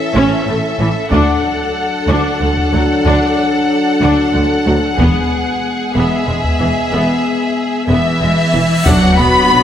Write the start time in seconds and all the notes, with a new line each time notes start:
Already playing: E3 C#4 A4 E5
0.15 A1 A2 C#4
0.47 A1 A2 A3
0.79 A1 A2 E3
1.11 D2 F#3 D4 A4 F#5, taiko
2.08 D2 D4
2.41 D2 A3
2.57 taiko
2.73 D2 F#3
3.05 D2 D4
4.02 D2 D4
4.34 D2 A3
4.66 D2 F#3
4.99 E1 E2 G#3 B3 G#4, taiko
5.95 E1 E2 B3 E5
6.27 E1 E2 G#3
6.44 taiko
6.59 E1 E2 E3
6.92 E1 E2 B3, cymbal swell
7.88 E1 E2 E3 B3 E5
8.21 E1 E2 G#3
8.53 E1 E2 E3
8.85 B1 F#3 B3 D4 F#4 F#5, taiko, impact
9.16 B1 B3 B5
9.51 B1 F#3